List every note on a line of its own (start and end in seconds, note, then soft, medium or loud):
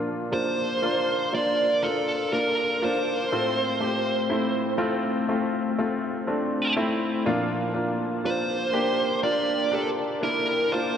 0.00 3.26 A#2 soft
0.00 3.26 F3 soft
0.00 0.32 A#3 medium
0.00 0.32 D4 medium
0.00 0.32 F4 medium
0.32 0.79 A#3 soft
0.32 0.80 D4 soft
0.32 0.80 F4 medium
0.32 1.34 C5 medium
0.82 1.30 A#3 medium
0.82 1.30 D4 medium
0.82 1.30 F4 medium
1.32 1.80 A#3 soft
1.32 1.80 D4 soft
1.32 1.80 F4 medium
1.32 1.85 D5 medium
1.82 2.30 A#3 soft
1.82 2.30 D4 soft
1.82 2.30 F4 medium
1.82 2.33 A4 medium
2.32 2.79 A#3 medium
2.32 2.79 D4 soft
2.32 2.79 F4 medium
2.32 2.84 A#4 medium
2.82 3.29 A#3 medium
2.82 3.29 D4 medium
2.82 3.29 F4 medium
2.82 6.73 C5 medium
3.32 7.22 A2 soft
3.32 3.79 A3 medium
3.32 3.79 C4 medium
3.32 3.79 F4 medium
3.80 4.27 A3 soft
3.80 4.28 C4 soft
3.80 4.28 G4 medium
4.29 4.76 A3 medium
4.29 4.76 C4 medium
4.29 4.77 E4 medium
4.78 5.26 A3 medium
4.78 5.26 C4 medium
4.78 5.26 F4 medium
5.29 5.76 A3 medium
5.29 5.76 C4 medium
5.29 5.76 F4 medium
5.78 6.25 A3 medium
5.78 6.25 C4 medium
5.78 6.25 F4 medium
6.27 6.74 A3 medium
6.27 6.74 C4 medium
6.27 6.74 D4 medium
6.76 7.23 A3 medium
6.76 7.23 C4 medium
6.76 7.23 E4 medium
7.26 10.97 A#2 medium
7.26 10.97 F3 medium
7.26 7.72 A#3 medium
7.26 7.73 D4 medium
7.26 7.73 F4 medium
7.74 8.21 A#3 medium
7.74 8.21 D4 medium
7.74 8.21 F4 medium
8.24 8.71 A#3 medium
8.24 8.71 D4 soft
8.24 8.71 F4 medium
8.24 9.20 C5 medium
8.73 9.20 A#3 medium
8.73 9.20 D4 medium
8.73 9.20 G4 medium
9.22 9.69 A#3 medium
9.22 9.70 D4 soft
9.22 9.70 F4 medium
9.22 9.74 D5 medium
9.71 10.19 A#3 medium
9.71 10.19 D4 soft
9.71 10.19 G4 medium
9.71 9.87 A4 medium
10.21 10.68 A#3 medium
10.21 10.68 D4 soft
10.21 10.69 E4 medium
10.21 10.74 A#4 medium
10.72 10.97 A#3 medium
10.72 10.97 D4 medium
10.72 10.97 F4 medium
10.72 10.97 C5 medium